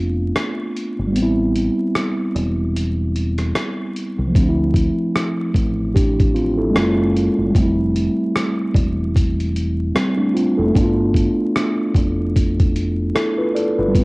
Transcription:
Already playing: F1 A3 B3 D4 F4
0.36 cross-stick, closed hi-hat
0.76 closed hi-hat
0.99 G1
1.07 G3
1.12 A1 B3, closed hi-hat
1.17 C4
1.22 E4
1.56 closed hi-hat
1.95 cross-stick, closed hi-hat
2.35 E1, closed hi-hat
2.76 closed hi-hat
3.16 closed hi-hat
3.38 cross-stick, closed hi-hat
3.55 cross-stick, closed hi-hat
3.96 closed hi-hat
4.18 C2
4.27 F3
4.32 D2 A3, kick, closed hi-hat
4.37 C4
4.42 D4
4.49 E4
4.74 kick, closed hi-hat
5.16 cross-stick, closed hi-hat
5.54 A1, kick, closed hi-hat
5.95 D4 G4, kick, closed hi-hat
6.20 kick, closed hi-hat
6.35 C4 F4, closed hi-hat
6.58 E4 A4
6.71 G#3 A#3
6.75 F#1 C#4 F4, cross-stick, closed hi-hat
7.17 closed hi-hat
7.38 F#1
7.47 G3
7.52 F1 A3, kick, closed hi-hat
7.57 C4
7.63 E4
7.96 closed hi-hat
8.36 cross-stick, closed hi-hat
8.74 E1, kick, closed hi-hat
9.16 kick, closed hi-hat
9.40 closed hi-hat
9.56 closed hi-hat
9.95 G3 C4, cross-stick, closed hi-hat
10.17 A3 D4
10.34 C4 F4, closed hi-hat
10.57 F1 E4 A4
10.66 A3
10.71 B3, kick
10.75 G1 D4, closed hi-hat
10.81 F4
11.14 kick, closed hi-hat
11.56 cross-stick, closed hi-hat
11.94 F1, kick, closed hi-hat
12.36 kick, closed hi-hat
12.60 kick, closed hi-hat
12.76 closed hi-hat
13.15 E4 A4, cross-stick, closed hi-hat
13.38 F4 B4
13.55 A4 D5, closed hi-hat
13.79 G1 F4 B4
13.88 G3
13.93 A1 B3, kick, closed hi-hat
13.99 C4

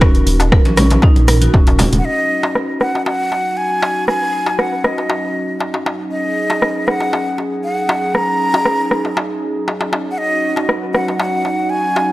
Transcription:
Already playing: D#1
0.01 C#4, kick, cross-stick, muted conga
0.15 closed hi-hat
0.27 D#1, open hi-hat, muted conga
0.40 closed hi-hat, darbuka ka, darbuka tek
0.52 A#4, kick, cross-stick
0.65 A#1 C#4, closed hi-hat, muted conga, high conga
0.77 C#4, cross-stick, open hi-hat, high conga, low conga
0.90 closed hi-hat, muted conga, darbuka ka, high conga
1.02 D#4, kick, darbuka tek
1.16 A#1, closed hi-hat, muted conga
1.28 A#4, cross-stick, open hi-hat, high conga
1.42 F#4, closed hi-hat, high conga
1.54 D#1 C#4, kick, muted conga, darbuka tek
1.67 closed hi-hat, darbuka ka
1.79 open hi-hat, muted conga, darbuka tek, low conga
1.92 D#1, closed hi-hat, low conga
1.99 F#5
2.05 F#3 C#4 D#4 F#4 D#5
2.43 darbuka ka, darbuka tek
2.55 cross-stick
2.81 F#5, cross-stick
2.95 darbuka ka
3.06 F#5, darbuka tek
3.32 darbuka ka
3.57 G#5
3.83 darbuka ka, darbuka tek
4.08 G#5, cross-stick
4.46 darbuka ka, darbuka tek
4.59 F#5, cross-stick
4.84 D#5, cross-stick
4.98 darbuka ka
5.10 darbuka tek
5.61 darbuka tek
5.74 darbuka ka
5.86 darbuka tek
6.11 G#4 D#5
6.50 darbuka ka, darbuka tek
6.62 cross-stick
6.87 F#5, cross-stick
7.01 darbuka ka
7.13 darbuka tek
7.38 darbuka ka
7.64 F#5
7.89 darbuka ka, darbuka tek
8.14 A#5, cross-stick
8.54 darbuka ka, darbuka tek
8.65 cross-stick
8.91 cross-stick
9.05 darbuka ka
9.17 darbuka tek
9.68 darbuka tek
9.81 darbuka ka
9.93 darbuka tek
10.11 F#5
10.18 F#4 D#5
10.56 darbuka ka, darbuka tek
10.69 cross-stick
10.94 F#5, cross-stick
11.08 darbuka ka
11.19 F#5, darbuka tek
11.45 darbuka ka
11.70 G#5
11.96 darbuka ka, darbuka tek

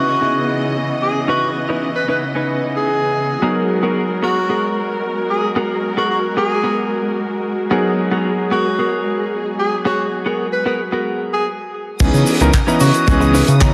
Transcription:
Already playing: C#3 E3 B3 C#4 F#4 G#4 D#5
0.21 C#4 D#4 E4 G#4
1.02 G#4
1.28 C#4 D#4 E4 F#4 B4
1.69 C#4 D#4 E4 B4
1.96 B4
2.08 C#4 D#4 E4 B4
2.35 C#4 D#4 E4 B4
2.77 G#4
3.42 F#3 G#3 B3 D#4 F#4 G#4 A#4
3.83 B3 F#4 G#4 A#4
4.22 B3 F#4 G#4 A#4
4.49 B3 F#4 G#4 A#4
5.30 G#4
5.56 B3 F#4 G#4 A#4
5.97 B3 F#4 G#4 A#4
6.11 F#4
6.37 B3 F#4 G#4 A#4
6.63 B3 F#4 G#4 A#4
7.71 F#3 B3 D#4 F#4 G#4 A#4
8.11 B3 F#4 G#4 A#4
8.51 B3 F#4 G#4 A#4
8.79 B3 F#4 G#4 A#4
9.59 G#4
9.85 B3 F#4 G#4 C#5
10.26 B3 F#4 G#4 A#4
10.53 B4
10.66 B3 F#4 G#4 A#4 B4
10.92 B3 F#4 G#4 A#4
11.33 G#4
12.00 C#2 E3 B3 C#4 D#4 G#4 D#6, kick, closed hi-hat, crash, shaker
12.14 C#3, shaker
12.27 open hi-hat, shaker
12.40 C#2 E3 B3 C#4 D#4 A#4, closed hi-hat, shaker
12.54 kick, clap, closed hi-hat, shaker
12.67 E3 B3 C#4 D#4 E4 B4 D#5 A#5, shaker
12.80 C#3 F#4, open hi-hat, shaker
12.94 closed hi-hat, shaker
13.07 C#2 E3 B3 C#4 G#4 D#5, kick, closed hi-hat, shaker
13.21 muted clean electric guitar stroke, shaker
13.34 C#4 D#4 E4 B4, open hi-hat, shaker
13.48 C#3, closed hi-hat, shaker
13.61 E3 B3 C#4 D#5 A#5, kick, clap, closed hi-hat, shaker

